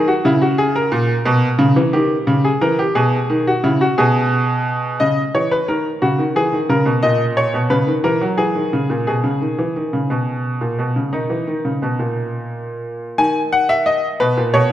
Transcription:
Already playing: D#3
0.08 F#4
0.25 C#3 E4
0.42 F#4
0.58 G#4
0.76 A#4
0.92 A#2
1.25 B2
1.59 C#3
1.76 E3
1.93 D#3 G4
2.27 C#3
2.45 G#4
2.61 E3 A#4
2.79 G4
2.95 B2 G#4
3.30 D#3
3.47 F#4
3.64 C#3 E4
3.81 F#4
3.98 B2 G#4
5.00 C#3 D#5
5.35 E3 C#5
5.51 B4
5.68 D#3 A#4
6.02 C#3 F#4
6.18 D#3
6.36 E3 G#4
6.53 D#3
6.69 C#3 A#4
6.86 B2
7.03 A#2 D#5
7.37 C#5
7.54 B2
7.70 C#3 B4
7.87 D#3
8.04 E3 A#4
8.21 F#3
8.38 E3 G#4
8.55 D#3
8.73 C#3
8.90 A#2
9.07 B2 G#4
9.24 C#3
9.41 D#3
9.59 E3
9.76 D#3
9.93 C#3
10.10 B2
10.61 A#2
10.79 B2
10.96 C#3
11.13 D#3 D#4
11.30 E3
11.47 D#3
11.65 C#3
11.82 B2
11.99 A#2
13.18 D#3 G#5
13.53 F#5
13.69 E5
13.86 D#5
14.20 B2 B4
14.37 A#2
14.54 B2 C#5

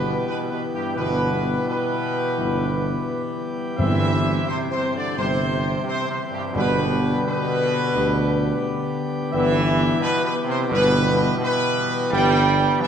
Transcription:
Already playing: G1 B2 E3 G3 B3 G4 B4
0.27 B2 B4
0.51 B2 B4
0.74 G2 G4
0.95 G1 B2 E3 G3 B3 G4 B4
1.00 E3 B3
1.67 B2 B4
2.37 G1 E3 B3
3.78 G1 G2 E3 G3 C4 E5
4.48 C3 C5
4.71 C3 C5
4.96 D3 D5
5.17 G1 C3 G3 C4 C5
5.84 C3
5.88 C5
6.08 C3 C5
6.31 G2 G4
6.54 G1 G2 B2 D3 G3 B3 G4 B4
7.25 B2 B4
7.95 D2 G3 B3
9.32 G1 E3 G3 B3 G4 E5
10.01 B2 B4
10.21 B2
10.25 B4
10.45 C3
10.50 C5
10.67 G1 B2
10.72 G3 B3 B4
11.38 B2
11.43 B4
12.10 G1 E3 G3 B3 G4 G5
12.80 E3 E5

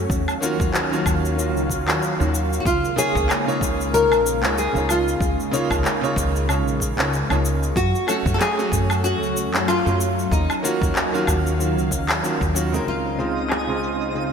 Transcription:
Already playing: C#4
0.10 D#2 D#3 F#3 F5, kick, shaker
0.28 low woodblock, shaker
0.41 D#3 A#3 C#4 F4 F#4, shaker
0.60 D#2, kick, shaker
0.74 clap, shaker
0.91 D#3 A#3 C#4 F4 F#4, shaker
1.06 D#2, kick, low woodblock, shaker
1.25 shaker
1.37 D#3 A#3 C#4 F4 F#4, shaker
1.56 C#2, shaker
1.70 kick, shaker
1.86 D#2 D#3 A#3 C#4 F4 F#4, clap, low woodblock, shaker
2.03 shaker
2.18 D#2 D#3 A#3 C#4 F4 F#4, shaker
2.35 shaker
2.53 shaker
2.60 F#4
2.65 C#2 C#3 G#3 A#3 F4, kick, shaker
2.85 shaker
2.96 C#3 A#3 D#4 F4 G#4 C#5, shaker
3.15 C#2, kick, shaker
3.29 clap, low woodblock, shaker
3.46 C#3 A#3 D#4 F4 C#5, shaker
3.61 C#2, kick, shaker
3.81 shaker
3.92 C#3 A#3 D#4 F4 A#4 C#5, shaker
4.11 A#1, low woodblock, shaker
4.26 shaker
4.42 C#2 C#3 A#3 D#4 F4 C#5, clap, shaker
4.58 G#4, shaker
4.73 C#2 C#3 A#3 D#4 F4, shaker
4.77 C#5
4.89 F4, low woodblock, shaker
5.08 shaker
5.20 C#2, kick, shaker
5.40 shaker
5.51 C#3 A#3 D#4 F4 C#5, shaker
5.70 C#2, kick, low woodblock, shaker
5.85 clap, shaker
6.01 C#3 A#3 D#4 F4 C#5, shaker
6.16 C#2, kick, shaker
6.36 shaker
6.47 C#3 A#3 D#4 F4 C#5, low woodblock, shaker
6.67 A#1, shaker
6.80 kick, shaker
6.97 C#2 C#3 A#3 D#4 F4 C#5, clap, shaker
7.13 shaker
7.29 C#2 C#3 A#3 D#4 F4 C#5, low woodblock, shaker
7.45 shaker
7.63 shaker
7.76 F#2 F#3 A3 C#4 F#4, kick, shaker
7.95 shaker
8.07 A3 C#4 F#4 A4, low woodblock, shaker
8.26 F#2, kick, shaker
8.34 A4
8.40 G#4, clap, shaker
8.57 A3 C#4 F#4, shaker
8.72 F#2, kick, shaker
8.90 low woodblock, shaker
9.03 A3 C#4 F#4, shaker
9.23 C#2, shaker
9.37 shaker
9.52 F#2 A3 C#4 F#4, clap, shaker
9.68 F4, low woodblock, shaker
9.85 F#2 F#3 A3 C#4, shaker
10.01 shaker
10.19 shaker
10.31 D#2 D#3 D#4 F5, kick, shaker
10.50 low woodblock, shaker
10.62 D#3 A#3 C#4 F4 F#4, shaker
10.81 D#2, kick, shaker
10.96 clap, shaker
11.12 D#3 A#3 C#4 F4 F#4, shaker
11.27 D#2, kick, low woodblock, shaker
11.47 shaker
11.58 D#3 A#3 C#4 F4 F#4, shaker
11.78 C#2, shaker
11.91 kick, shaker
12.09 D#2, clap, low woodblock, shaker
12.22 D#3 A#3 C#4 F4 F#4, shaker
12.41 D#2, kick, shaker
12.53 D#3 A#3 C#4 F4 F#4, shaker
12.72 C#3 G#3 C4 D#4 A#4, shaker
12.86 C#2 C#3 C4 D#4 F4 D#5 D#6, shaker
13.06 shaker
13.18 C#3 G#3 C4 D#4 F4, shaker
13.37 shaker
13.50 G#4, clap, low woodblock, shaker
13.67 C#3 G#3 C4 D#4 F4, shaker
13.83 shaker
14.01 shaker
14.13 C#3 G#3 C4 D#4 F4, shaker

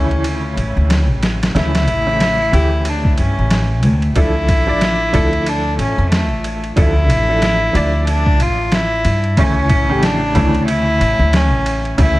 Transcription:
Already playing: D2 C#3 E3 A3 C#4 E4 G4
0.11 ride
0.24 ride
0.57 A1, ride
0.77 D2
0.90 snare, ride
1.10 A1
1.23 snare, ride
1.43 snare, ride
1.55 D2 C#3 E3 A3 E4, snare, ride
1.75 snare, ride
1.88 A1, ride
2.06 C#3 E3 A3 E4
2.20 snare, ride
2.52 D2 E3 A3 G4, ride
2.85 D4, ride
3.05 kick
3.18 G2 C#4, ride
3.39 A1
3.51 snare, ride
3.83 D2, ride
4.02 ride
4.15 D2 F3 D4 E4 A4, kick, ride
4.48 A1, kick, ride
4.67 F3 D4 E4 D5
4.81 snare, ride
5.13 D2 F3 D4 E4 A4, kick, ride
5.33 ride
5.46 D4, ride
5.79 A1 C#4, ride
5.98 F2
6.12 A3, snare, ride
6.31 A1
6.44 ride
6.64 ride
6.76 D2 F3 D4 E4 A4, kick, ride
7.10 A1, ride
7.29 F3 D4 E4 A4
7.42 snare, ride
7.73 D2 F3 D4 D5 E5, ride
8.07 D4, ride
8.26 kick
8.40 A1 F4, ride
8.72 E4, snare, ride
9.05 G2, ride
9.24 ride
9.37 D2 C#3 E3 A3 C#4 E4, kick, ride
9.69 A1, kick, ride
9.89 C#3 E3 A3 G4
10.03 D4, snare, ride
10.35 D2 C#3 E3 A3 E4, kick, ride
10.55 ride
10.68 E4, ride
11.00 A1, ride
11.19 D2
11.33 C#4, snare, ride
11.53 A1
11.66 ride
11.85 ride
11.98 D2 C#3 E3 A3 E4, kick, ride

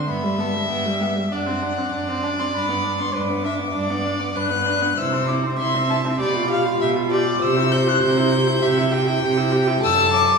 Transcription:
0.08 G2 B3 E5 B5
0.24 G3
0.38 B3 A5
0.54 G3
0.70 G2 B3 G5
0.85 G3
1.01 B3 E5
1.16 G3
1.31 F#2 D4 D5 F#5
1.47 C4
1.62 D4
1.78 C4
1.92 F#2 D4 D5
2.09 C4
2.23 D4 A5
2.39 C4 C6
2.54 G2 D4 B5
2.69 B3
2.84 D4
2.99 B3 C6
3.14 G2 D4 B4 D6
3.29 B3
3.44 D4 E5
3.59 B3
3.74 G2 D4 D5
3.90 B3
4.05 D4
4.20 B3
4.35 G2 D4 B4 F#6
4.50 B3
4.66 D4
4.81 B3
4.97 C3 E4 C5 E6
5.13 C4
5.28 E4 D6
5.44 C4
5.59 C3 E4 E5 C6
5.75 C4
5.90 E4 A5
6.05 C4
6.20 B2 G4 D5 B5
6.35 F4
6.50 G4 F5
6.65 F4
6.81 B2 G4 E5
6.96 F4
7.11 G4 D5 D6
7.26 F4
7.41 C3 G4 C5 E6
7.57 E4
7.72 G4 G6
7.87 E4 F#6
8.02 C3 G4 G6
8.17 E4
8.32 G4
8.47 E4
8.62 C3 G4 E5
8.78 E4
8.92 G4 G5
9.07 E4
9.23 C3 G4
9.37 E4
9.52 G4
9.67 E4
9.83 F#2 A4 A5 E6
10.13 D6

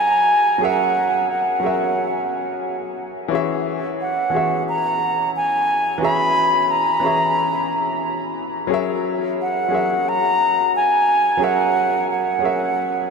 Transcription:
Already playing: F#3 C#4 G#4 A#4 E5 G#5
0.58 F#3 C#4 G#4
0.63 A#4 E5 F#5
1.31 F#5
1.60 F#3 C#4 G#4
1.65 A#4 E5
3.28 E3 C#4 F#4
3.33 G#4 E5
4.01 F#5
4.30 E3 C#4 F#4
4.35 G#4 E5
4.69 A#5
5.36 G#5
5.98 E3 C#4 F#4
6.03 G#4 E5 B5
6.71 A#5
7.00 E3 C#4 F#4
7.05 G#4 E5
8.67 F#3 C#4 G#4
8.72 A#4 E5
9.42 F#5
9.68 F#3 C#4 G#4
9.73 A#4 E5
10.09 A#5
10.76 G#5
11.37 F#3 C#4 G#4
11.42 A#4 E5 F#5
12.11 F#5
12.39 F#3 C#4 G#4
12.44 A#4 E5

